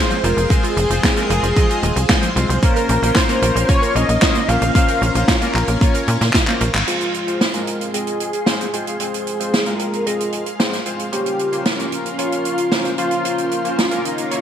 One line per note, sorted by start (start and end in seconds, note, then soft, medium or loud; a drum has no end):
0.00 0.15 G#3 medium
0.00 0.15 C4 medium
0.00 0.15 F4 medium
0.00 2.59 G#4 medium
0.00 0.15 C5 loud
0.00 0.25 C5 loud
0.00 2.59 C5 medium
0.00 2.59 F5 medium
0.00 6.84 C6 medium
0.10 0.23 F3 loud
0.10 closed hi-hat medium
0.24 0.33 F1 loud
0.24 0.47 G#3 medium
0.24 0.47 C4 medium
0.24 0.33 F4 medium
0.24 0.47 F4 medium
0.24 0.52 A#4 loud
0.24 0.47 C5 medium
0.24 closed hi-hat medium
0.37 0.47 F1 medium
0.37 0.46 F3 medium
0.37 closed hi-hat medium
0.50 0.59 F3 medium
0.50 0.87 G#3 medium
0.50 0.87 C4 medium
0.50 0.87 F4 medium
0.50 1.29 G#4 loud
0.50 0.87 C5 medium
0.50 kick loud
0.50 closed hi-hat loud
0.63 0.72 F4 loud
0.63 closed hi-hat medium
0.77 0.86 F1 loud
0.77 0.86 G#3 medium
0.77 closed hi-hat medium
0.90 1.00 F1 medium
0.90 1.03 F3 medium
0.90 1.08 G#3 medium
0.90 1.08 C4 medium
0.90 1.08 F4 medium
0.90 1.08 C5 loud
0.90 closed hi-hat medium
1.03 1.12 C4 medium
1.03 kick loud
1.03 snare loud
1.03 clap medium
1.03 closed hi-hat loud
1.16 1.29 F3 loud
1.16 1.53 G#3 medium
1.16 1.53 C4 medium
1.16 1.53 F4 medium
1.16 1.53 A#4 loud
1.16 closed hi-hat medium
1.30 1.40 F1 loud
1.30 1.39 F4 medium
1.30 2.32 G#4 medium
1.30 closed hi-hat medium
1.43 1.53 F1 medium
1.43 1.52 F3 medium
1.43 closed hi-hat medium
1.56 1.65 F3 medium
1.56 1.93 G#3 medium
1.56 1.93 C4 medium
1.56 1.93 F4 medium
1.56 1.93 D#5 medium
1.56 kick loud
1.56 closed hi-hat medium
1.70 1.79 F4 loud
1.70 closed hi-hat medium
1.83 1.93 D#1 medium
1.83 1.92 G#3 medium
1.83 closed hi-hat medium
1.96 2.06 C2 medium
1.96 2.09 F3 medium
1.96 closed hi-hat medium
2.09 2.27 G#3 medium
2.09 2.18 C4 medium
2.09 2.27 C4 medium
2.09 2.27 F4 medium
2.09 2.27 C5 loud
2.09 kick loud
2.09 snare loud
2.09 clap medium
2.09 closed hi-hat loud
2.23 2.35 F3 loud
2.23 closed hi-hat medium
2.36 2.46 C2 medium
2.36 2.60 G#3 medium
2.36 2.60 C4 medium
2.36 2.45 F4 medium
2.36 2.60 F4 medium
2.36 2.60 C5 medium
2.36 closed hi-hat medium
2.49 2.59 C2 medium
2.49 2.58 F3 medium
2.49 closed hi-hat medium
2.62 2.99 A#3 medium
2.62 2.72 A#3 medium
2.62 6.83 C#4 medium
2.62 2.99 C#4 medium
2.62 2.99 F4 medium
2.62 6.83 A#4 medium
2.62 3.17 A#4 medium
2.62 2.99 C5 medium
2.62 6.83 F5 medium
2.62 kick loud
2.62 closed hi-hat loud
2.76 2.85 A#4 loud
2.76 closed hi-hat medium
2.89 2.99 A#1 loud
2.89 2.98 C#4 medium
2.89 closed hi-hat medium
3.02 3.12 A#1 medium
3.02 3.20 A#3 medium
3.02 3.15 A#3 medium
3.02 3.20 C#4 medium
3.02 3.20 F4 medium
3.02 3.20 C5 medium
3.02 closed hi-hat medium
3.15 3.25 F4 medium
3.15 3.70 C5 loud
3.15 kick loud
3.15 snare loud
3.15 clap medium
3.15 closed hi-hat loud
3.29 3.66 A#3 medium
3.29 3.42 A#3 loud
3.29 3.66 C#4 medium
3.29 3.66 F4 medium
3.29 3.66 A#4 loud
3.29 closed hi-hat medium
3.42 3.52 A#1 medium
3.42 3.51 A#4 medium
3.42 closed hi-hat medium
3.56 3.65 A#1 medium
3.56 3.65 A#3 medium
3.56 closed hi-hat medium
3.68 4.06 A#3 medium
3.68 3.78 A#3 medium
3.68 4.06 C#4 medium
3.68 4.06 F4 medium
3.68 3.97 C#5 loud
3.68 4.06 C#5 loud
3.68 kick loud
3.68 closed hi-hat medium
3.82 3.91 A#4 loud
3.82 closed hi-hat medium
3.95 4.05 A#1 medium
3.95 4.04 C#4 medium
3.95 4.50 D#5 loud
3.95 closed hi-hat medium
4.09 4.18 A#1 medium
4.09 4.21 A#3 medium
4.09 closed hi-hat medium
4.21 4.40 A#3 medium
4.21 4.40 C#4 medium
4.21 4.40 F4 medium
4.21 4.31 F4 medium
4.21 4.40 C5 loud
4.21 kick loud
4.21 snare loud
4.21 clap medium
4.21 closed hi-hat loud
4.35 4.48 A#3 loud
4.35 closed hi-hat medium
4.48 4.58 A#1 loud
4.48 4.72 A#3 medium
4.48 4.72 C#4 medium
4.48 4.72 F4 medium
4.48 4.57 A#4 medium
4.48 4.72 C5 medium
4.48 5.55 F5 loud
4.48 closed hi-hat medium
4.62 4.71 A#1 medium
4.62 4.71 A#3 medium
4.62 closed hi-hat medium
4.75 4.84 A#3 medium
4.75 5.12 A#3 medium
4.75 5.12 C#4 medium
4.75 5.12 F4 medium
4.75 5.12 C5 medium
4.75 kick loud
4.75 closed hi-hat loud
4.88 4.97 A#4 loud
4.88 closed hi-hat medium
5.02 5.11 A#1 loud
5.02 5.10 C#4 medium
5.02 closed hi-hat soft
5.15 5.25 A#1 medium
5.15 5.28 A#3 medium
5.15 5.33 A#3 medium
5.15 5.33 C#4 medium
5.15 5.33 F4 medium
5.15 5.33 C5 medium
5.15 closed hi-hat medium
5.28 5.37 F4 medium
5.28 kick loud
5.28 snare loud
5.28 clap medium
5.28 closed hi-hat loud
5.41 5.54 A#3 loud
5.41 5.78 A#3 medium
5.41 5.78 C#4 medium
5.41 5.78 F4 medium
5.41 5.78 A#4 loud
5.41 closed hi-hat medium
5.55 5.64 A#1 loud
5.55 5.64 A#4 medium
5.55 clap medium
5.55 closed hi-hat medium
5.68 5.78 A#1 medium
5.68 5.77 A#3 medium
5.68 closed hi-hat medium
5.81 5.90 A#3 medium
5.81 6.18 A#3 medium
5.81 6.18 C#4 medium
5.81 6.18 F4 medium
5.81 6.18 C#5 medium
5.81 kick loud
5.81 closed hi-hat loud
5.94 6.03 A#4 loud
5.94 closed hi-hat medium
6.08 6.18 A#2 loud
6.08 6.17 C#4 medium
6.08 closed hi-hat medium
6.21 6.31 A#2 medium
6.21 6.34 A#3 medium
6.21 snare soft
6.21 closed hi-hat medium
6.33 6.43 F4 medium
6.33 kick loud
6.33 snare loud
6.33 clap medium
6.33 closed hi-hat loud
6.47 6.65 A#3 medium
6.47 6.60 A#3 loud
6.47 6.65 C#4 medium
6.47 6.65 F4 medium
6.47 6.65 C5 loud
6.47 clap medium
6.47 closed hi-hat medium
6.61 6.71 A#1 loud
6.61 6.70 A#4 medium
6.61 closed hi-hat medium
6.74 6.84 G#1 medium
6.74 6.83 A#3 medium
6.74 clap medium
6.74 closed hi-hat medium
6.87 7.24 G#3 medium
6.87 7.24 C4 medium
6.87 7.63 F4 loud
6.87 7.24 F4 medium
6.87 11.08 G#4 medium
6.87 7.24 C5 medium
6.87 14.41 F5 medium
6.87 14.41 C6 medium
6.87 closed hi-hat loud
6.87 crash medium
7.01 closed hi-hat medium
7.14 closed hi-hat medium
7.27 7.45 G#3 medium
7.27 7.45 C4 medium
7.27 7.45 F4 medium
7.27 7.45 C5 medium
7.27 closed hi-hat soft
7.41 snare loud
7.41 closed hi-hat medium
7.54 7.91 G#3 medium
7.54 7.91 C4 medium
7.54 7.91 F4 medium
7.54 7.91 A#4 loud
7.54 closed hi-hat medium
7.67 closed hi-hat medium
7.81 closed hi-hat medium
7.94 8.30 G#3 medium
7.94 8.30 C4 medium
7.94 8.30 F4 medium
7.94 8.69 G#4 loud
7.94 8.30 D#5 medium
7.94 closed hi-hat loud
8.07 closed hi-hat soft
8.20 closed hi-hat medium
8.33 closed hi-hat medium
8.46 8.65 G#3 medium
8.46 8.65 C4 medium
8.46 8.65 F4 medium
8.46 8.65 C5 loud
8.46 snare loud
8.46 closed hi-hat loud
8.61 closed hi-hat medium
8.73 8.97 G#3 medium
8.73 8.97 C4 medium
8.73 8.97 F4 medium
8.73 9.81 G#4 loud
8.73 8.97 C5 medium
8.73 closed hi-hat medium
8.87 closed hi-hat medium
9.00 9.37 G#3 medium
9.00 9.37 C4 medium
9.00 9.37 F4 medium
9.00 9.37 C5 medium
9.00 closed hi-hat medium
9.14 closed hi-hat medium
9.27 closed hi-hat medium
9.40 9.58 G#3 medium
9.40 9.58 C4 medium
9.40 9.58 F4 medium
9.40 9.58 C5 medium
9.40 closed hi-hat medium
9.54 snare loud
9.54 closed hi-hat medium
9.66 10.03 G#3 medium
9.66 10.03 C4 medium
9.66 10.03 F4 medium
9.66 10.03 A#4 medium
9.66 closed hi-hat medium
9.79 10.08 A#4 loud
9.79 closed hi-hat medium
9.93 closed hi-hat soft
10.06 10.43 G#3 medium
10.06 10.43 C4 medium
10.06 10.43 F4 medium
10.06 10.59 G#4 loud
10.06 10.43 D#5 loud
10.06 closed hi-hat loud
10.20 closed hi-hat medium
10.32 closed hi-hat medium
10.46 closed hi-hat medium
10.59 10.77 G#3 medium
10.59 10.77 C4 medium
10.59 10.77 F4 medium
10.59 10.77 C5 loud
10.59 snare loud
10.59 closed hi-hat medium
10.72 snare soft
10.72 closed hi-hat medium
10.86 11.09 G#3 medium
10.86 11.09 C4 medium
10.86 11.09 F4 medium
10.86 11.09 C5 medium
10.86 closed hi-hat medium
10.99 closed hi-hat soft
11.12 11.49 A#3 medium
11.12 11.49 C#4 medium
11.12 14.41 C#4 medium
11.12 11.49 F4 medium
11.12 14.41 F4 medium
11.12 11.88 G4 loud
11.12 14.41 A#4 medium
11.12 11.49 C5 medium
11.12 closed hi-hat medium
11.26 closed hi-hat soft
11.39 closed hi-hat soft
11.52 11.70 A#3 medium
11.52 11.70 C#4 medium
11.52 11.70 F4 medium
11.52 11.70 C5 medium
11.52 closed hi-hat soft
11.65 snare loud
11.65 closed hi-hat medium
11.79 12.15 A#3 medium
11.79 12.15 C#4 medium
11.79 12.15 F4 medium
11.79 12.15 A#4 medium
11.79 closed hi-hat medium
11.92 closed hi-hat medium
12.06 closed hi-hat medium
12.18 12.55 A#3 medium
12.18 12.55 C#4 medium
12.18 12.55 F4 medium
12.18 12.94 F4 loud
12.18 12.55 C#5 medium
12.18 closed hi-hat loud
12.32 closed hi-hat medium
12.45 closed hi-hat medium
12.58 closed hi-hat soft
12.71 12.89 A#3 medium
12.71 12.89 C#4 medium
12.71 12.89 F4 medium
12.71 12.89 C5 medium
12.71 snare loud
12.71 closed hi-hat medium
12.85 closed hi-hat soft
12.98 13.21 A#3 medium
12.98 13.21 C#4 medium
12.98 13.21 F4 medium
12.98 14.06 F4 loud
12.98 13.21 C5 medium
12.98 closed hi-hat medium
13.11 closed hi-hat medium
13.24 13.61 A#3 medium
13.24 13.61 C#4 medium
13.24 13.61 F4 medium
13.24 13.61 C5 medium
13.24 closed hi-hat medium
13.38 closed hi-hat soft
13.51 closed hi-hat medium
13.64 13.82 A#3 medium
13.64 13.82 C#4 medium
13.64 13.82 F4 medium
13.64 13.82 C5 medium
13.64 closed hi-hat soft
13.78 snare loud
13.78 closed hi-hat medium
13.91 14.28 A#3 medium
13.91 14.28 C#4 medium
13.91 14.28 F4 medium
13.91 14.28 A#4 loud
13.91 closed hi-hat medium
14.05 14.30 D#4 medium
14.05 closed hi-hat medium
14.18 closed hi-hat medium
14.31 14.41 A#3 medium
14.31 14.41 C#4 medium
14.31 14.41 F4 medium
14.31 14.41 F4 loud
14.31 14.41 C#5 medium
14.31 closed hi-hat medium